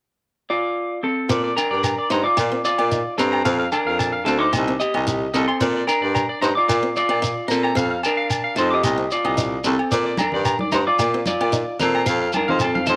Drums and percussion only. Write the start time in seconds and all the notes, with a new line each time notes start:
1.30 shekere
1.57 low agogo, shekere
1.84 low agogo, shekere
2.11 shekere
2.37 low agogo, shekere
2.65 shekere
2.78 low agogo
2.92 shekere
3.19 shekere
3.33 low agogo
3.45 shekere
3.72 low agogo, shekere
3.99 low agogo, shekere
4.27 shekere
4.53 low agogo, shekere
4.80 shekere
4.95 low agogo
5.07 shekere
5.34 shekere
5.49 low agogo
5.61 shekere
5.88 low agogo, shekere
6.15 low agogo, shekere
6.43 shekere
6.69 low agogo, shekere
6.96 shekere
7.10 low agogo
7.24 shekere
7.50 shekere
7.64 low agogo
7.77 shekere
8.03 low agogo, shekere
8.30 low agogo, shekere
8.57 shekere
8.84 low agogo, shekere
9.11 shekere
9.26 low agogo
9.38 shekere
9.64 shekere
9.79 low agogo
9.92 shekere
10.17 high conga, low agogo, shekere
10.32 low conga
10.45 low agogo, shekere
10.59 high conga
10.72 low conga, shekere
10.99 low agogo, shekere
11.26 high conga, shekere
11.41 low agogo
11.53 shekere
11.80 low conga, shekere
11.95 low agogo
12.06 shekere
12.32 high conga, low agogo, shekere
12.49 low conga
12.60 low agogo, shekere
12.75 high conga
12.86 low conga, shekere